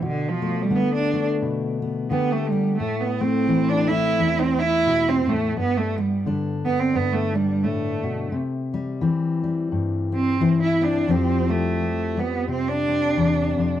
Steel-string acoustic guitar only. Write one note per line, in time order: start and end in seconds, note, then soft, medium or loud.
0.00 0.72 B2 medium
0.00 0.42 G3 soft
0.42 1.13 A3 medium
0.70 2.09 D3 medium
0.70 1.81 B3 soft
1.13 2.77 A3 soft
1.42 2.11 B2 medium
1.82 2.51 B3 medium
2.10 2.80 D3 medium
2.10 2.77 G4 medium
2.52 2.81 B3 medium
2.80 4.18 A2 medium
3.21 3.88 A3 medium
3.48 5.52 E3 medium
3.48 4.58 C4 medium
3.90 5.54 A3 soft
4.19 5.57 E2 medium
4.86 5.26 B2 medium
5.27 5.56 A2 medium
5.57 6.94 G2 medium
5.98 6.65 B3 soft
6.26 8.33 D3 medium
6.26 7.34 D4 medium
6.66 8.30 B3 soft
6.95 8.30 G2 medium
7.35 8.30 D4 medium
7.64 8.03 A2 medium
8.03 8.32 B2 medium
8.32 9.02 C3 medium
8.74 9.43 G3 medium
9.01 10.39 E3 medium
9.01 10.12 C4 medium
9.44 11.09 G3 soft
9.72 11.06 G2 medium
10.12 10.81 C4 medium
10.40 11.06 E3 medium
10.40 11.10 E4 medium
10.81 11.10 C4 medium
11.08 13.16 F2 medium
11.08 11.78 F3 medium
11.08 11.48 G3 medium
11.08 11.79 C4 medium
11.08 13.80 G4 medium
11.49 12.17 G3 medium
12.17 13.80 G3 medium
12.48 13.80 C3 medium
12.88 13.80 C4 medium
13.17 13.56 E2 medium
13.57 13.80 F2 medium